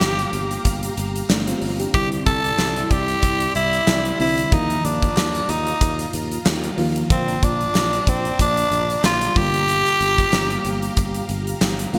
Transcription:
Already playing: D3 G3 A#3 F4 G4 F5 A#5
0.01 G1, snare, clap, tambourine
0.19 closed hi-hat
0.33 G1, closed hi-hat
0.51 closed hi-hat
0.65 G1, kick, closed hi-hat
0.83 closed hi-hat
0.97 G1, closed hi-hat
1.16 closed hi-hat
1.30 G1 A3 D4, snare, clap, tambourine
1.47 C4 F4, closed hi-hat
1.62 G1, open hi-hat
1.80 D4 G4, closed hi-hat
1.94 C2 D3 G3 C4 E4 G4 D5 C6, kick, closed hi-hat
2.12 closed hi-hat
2.26 C2 A4, kick, closed hi-hat
2.44 closed hi-hat
2.59 C2, snare, clap, tambourine
2.76 closed hi-hat
2.85 A4
2.91 C2 G4, kick, closed hi-hat
3.08 closed hi-hat
3.22 C2, kick, closed hi-hat
3.40 closed hi-hat
3.55 C2 E4, closed hi-hat
3.73 closed hi-hat
3.87 C2, snare, clap, tambourine
4.05 closed hi-hat
4.19 C2 D3 G3 C4 E4, open hi-hat
4.38 closed hi-hat
4.52 D#2 D#3 F3 A#3 D#4 F4 F5 A#5, kick, closed hi-hat
4.70 closed hi-hat
4.85 D#2 D4, closed hi-hat
5.02 kick, closed hi-hat
5.17 D#2, snare, clap, tambourine
5.35 closed hi-hat
5.49 D#2 D#4, closed hi-hat
5.67 closed hi-hat
5.81 D#2, kick, closed hi-hat
5.99 closed hi-hat
6.13 D#2, closed hi-hat
6.31 closed hi-hat
6.46 D#2, snare, clap, tambourine
6.64 closed hi-hat
6.77 D#2 D#3 F3 A#3 F4, open hi-hat
6.96 closed hi-hat
7.10 A#1 D3 F3 A#3 C4 F4 D5 A#5, kick, closed hi-hat
7.28 closed hi-hat
7.43 A#1 D4, kick, closed hi-hat
7.61 closed hi-hat
7.75 A#1, snare, clap, tambourine
7.93 closed hi-hat
8.07 A#1 C4, kick, closed hi-hat
8.25 closed hi-hat
8.39 A#1 D4, kick, closed hi-hat
8.57 closed hi-hat
8.71 A#1, closed hi-hat
8.90 closed hi-hat
9.04 A#1 F4, snare, clap, tambourine
9.21 closed hi-hat
9.35 G1 D3 G3 A#3 F4 G4 F5, kick, open hi-hat
9.54 closed hi-hat
9.68 closed hi-hat
9.86 closed hi-hat
10.01 G1, closed hi-hat
10.18 kick, closed hi-hat
10.33 G1, snare, clap, tambourine
10.50 closed hi-hat
10.65 G1, closed hi-hat
10.82 closed hi-hat
10.97 G1, kick, closed hi-hat
11.14 closed hi-hat
11.29 G1, closed hi-hat
11.47 closed hi-hat
11.61 G1, snare, clap, tambourine
11.79 closed hi-hat
11.93 G1 D3 G3 A#3 F4, open hi-hat

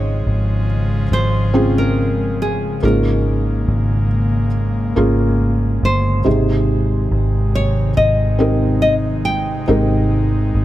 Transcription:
Already playing: G#1 G#2 C#3 F3 G#3 C#4 F4 G4 G#4 C5 C#5
0.27 G#1
1.12 G#1 C5
1.54 C4 C#4 F4 G#4
1.78 A#4
2.42 G#4
2.82 G#1 G#2 G#3 A#3 C#4 F4 G#4 A#4
3.68 G#1
4.96 G#1 A#3 C#4 F4 G#4
5.83 G1 C5
6.24 G#1 G#2 C3 D#3 D#4 G4 G#4
7.11 G#1
7.55 C#5
7.97 G#1 D#5
8.39 C4 D#4 G4 A#4
8.82 D#5
9.25 G5
9.68 G#1 G#2 C4 D#4 G4 A#4
10.55 G#1

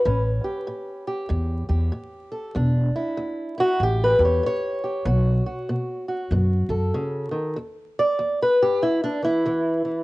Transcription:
Already playing: B4
0.05 A1 A2 C#4
0.44 G4
0.67 A2
1.07 G4
1.29 E2 A2
1.69 E2 G4
1.92 A2
2.32 A4
2.55 E1 E2 D4
2.96 E4
3.17 E2
3.58 E4 F#4
3.80 A1 A2 G4
4.04 B4
4.19 E2 G4
4.25 C#5
4.43 A2 C#5
4.84 G4
5.05 B1 B2 F#4
5.46 F#4
5.69 B2
6.08 F#4
6.31 F#2 B2
6.69 F#2 A4
6.94 C#3
7.31 D#3
7.56 E2
7.99 D5
8.19 E2
8.42 B4
8.62 G4
8.82 E2 E4
9.04 D4
9.22 E3 E4
9.46 E2 E3
9.85 E3

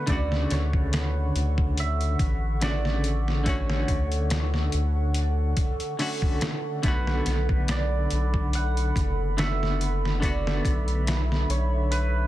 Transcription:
Already playing: A4 B4 F#5 C#6
0.07 D2 C#3 D3 A3 D5, kick, closed hi-hat
0.12 F#4
0.32 snare
0.50 D2 C#5, snare, closed hi-hat
0.73 kick
0.93 snare, closed hi-hat
1.36 D2, closed hi-hat
1.58 kick
1.77 E5, closed hi-hat
2.01 closed hi-hat
2.19 A1, kick, closed hi-hat
2.61 C#3 D3 A3 F#4 D5, snare, closed hi-hat
2.85 snare
3.04 closed hi-hat
3.28 snare
3.44 D3 A3 C#4 C#5, kick, closed hi-hat
3.49 F#4
3.70 snare
3.88 D2, kick, closed hi-hat
4.12 closed hi-hat
4.30 snare, closed hi-hat
4.54 snare
4.72 D2, closed hi-hat
5.14 closed hi-hat
5.57 kick, closed hi-hat
5.80 closed hi-hat
5.99 D3 A3 C#4 F#4, open hi-hat
6.22 kick
6.41 snare, closed hi-hat
6.83 B1 D3 A3 B3 B5, kick, closed hi-hat
6.87 F#4 B4
7.07 snare
7.26 B1, snare, closed hi-hat
7.49 kick
7.68 D5, snare, closed hi-hat
8.11 B1, closed hi-hat
8.34 kick
8.53 F#5, closed hi-hat
8.77 closed hi-hat
8.96 F#1, kick, closed hi-hat
9.37 D3 A3 B3 F#4 E5, snare, closed hi-hat
9.63 snare
9.81 closed hi-hat
10.05 snare
10.20 D3 A3 B3 D5 E5, kick, closed hi-hat
10.25 F#4
10.47 snare
10.65 B1, kick, closed hi-hat
10.88 closed hi-hat
11.07 snare, closed hi-hat
11.32 snare
11.49 B1 C#5, closed hi-hat
11.91 B4, closed hi-hat

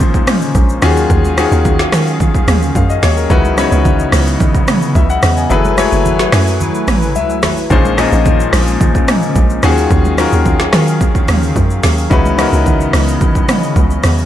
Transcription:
Already playing: A#2 F3 G#3 A#3 C#4 D#4 G#4 C5
0.00 kick, low conga, shaker
0.14 kick, shaker
0.27 cross-stick, mid tom, open hi-hat, shaker
0.42 shaker
0.55 A#1, kick, high conga, shaker
0.69 shaker
0.82 D#2 D#3 F#3 C#4 F4 F#4 G#4 F5, cross-stick, open hi-hat, high conga, low conga, shaker
0.97 shaker
1.10 D#2, kick, low conga, shaker
1.25 high conga, shaker
1.37 D#3 C#4 F4 F#4 G#4, cross-stick, open hi-hat, high conga, shaker
1.52 D#2, shaker
1.65 kick, low conga, shaker
1.79 snare, shaker
1.92 D#3, cross-stick, snare, open hi-hat, high conga, shaker
2.07 shaker
2.20 kick, low conga, shaker
2.35 kick, shaker
2.48 D#2, cross-stick, mid tom, open hi-hat, shaker
2.62 shaker
2.75 F#2 F5, kick, high conga, shaker
2.90 D#5, shaker
3.03 D#2 C#5, snare, open hi-hat, high conga, low conga, shaker
3.17 A#4, shaker
3.30 C#2 C#3 E3 B3 C#4 D#4 E4 F#4 B4 D#5, kick, low conga, shaker
3.45 high conga, shaker
3.57 C#3 C#4 D#4 E4 F#4 C#5, cross-stick, open hi-hat, high conga, shaker
3.72 C#2, shaker
3.85 kick, low conga, shaker
3.99 shaker
4.12 C#2, cross-stick, open hi-hat, high conga, shaker
4.27 shaker
4.40 kick, low conga, shaker
4.55 kick, shaker
4.68 cross-stick, mid tom, open hi-hat, shaker
4.82 shaker
4.95 C#2 E5, kick, high conga, shaker
5.10 F#5, shaker
5.23 E2, cross-stick, open hi-hat, high conga, low conga, shaker
5.37 G#5, shaker
5.49 F#1 F#3 A3 E4 G#4 A4 B4 G#5, low conga, shaker
5.65 high conga, shaker
5.77 F#3 E4 G#4 A4 C#5, cross-stick, open hi-hat, high conga, shaker
5.92 F#1, shaker
6.05 low conga, shaker
6.19 snare, shaker
6.32 F#2, cross-stick, snare, open hi-hat, high conga, shaker
6.47 shaker
6.60 low conga, shaker
6.75 shaker
6.88 A1, cross-stick, mid tom, open hi-hat, shaker
7.02 shaker
7.15 C#2 E5, high conga, shaker
7.30 shaker
7.43 A1, cross-stick, snare, open hi-hat, high conga, low conga, shaker
7.57 shaker
7.70 A#1 A#2 F3 G#3 A#3 C#4 D#4 G#4 C5, kick, low conga, shaker
7.85 high conga, shaker
7.97 A#2 F3 C#4 D#4 G#4 D#5, cross-stick, open hi-hat, high conga, shaker
8.12 A#1, shaker
8.26 kick, low conga, shaker
8.40 shaker
8.53 A#1, cross-stick, open hi-hat, high conga, shaker
8.67 shaker
8.81 kick, low conga, shaker
8.95 kick, shaker
9.08 cross-stick, mid tom, open hi-hat, shaker
9.22 shaker
9.36 A#1, kick, high conga, shaker
9.50 shaker
9.63 D#2 D#3 F#3 C#4 F4 F#4 G#4 F5, cross-stick, open hi-hat, high conga, low conga, shaker
9.77 shaker
9.91 D#2, kick, low conga, shaker
10.05 high conga, shaker
10.18 D#3 C#4 F4 F#4 A#4, cross-stick, open hi-hat, high conga, shaker
10.32 D#2, shaker
10.45 kick, low conga, shaker
10.60 snare, shaker
10.73 D#3, cross-stick, snare, open hi-hat, high conga, shaker
10.88 shaker
11.01 kick, low conga, shaker
11.15 kick, shaker
11.28 D#2, cross-stick, mid tom, open hi-hat, shaker
11.43 shaker
11.56 F#2, kick, high conga, shaker
11.70 shaker
11.83 D#2, snare, open hi-hat, high conga, low conga, shaker
11.98 shaker
12.10 C#2 C#3 E3 B3 C#4 D#4 E4 F#4 B4 D#5, kick, low conga, shaker
12.25 high conga, shaker
12.38 C#3 C#4 D#4 E4 F#4 A#4, cross-stick, open hi-hat, high conga, shaker
12.53 C#2, shaker
12.66 kick, low conga, shaker
12.81 shaker
12.93 C#2, cross-stick, open hi-hat, high conga, shaker
13.08 shaker
13.21 kick, low conga, shaker
13.35 kick, shaker
13.49 cross-stick, mid tom, open hi-hat, shaker
13.63 shaker
13.76 C#2, kick, high conga, shaker
13.91 shaker
14.04 E2, cross-stick, open hi-hat, high conga, low conga, shaker
14.18 shaker

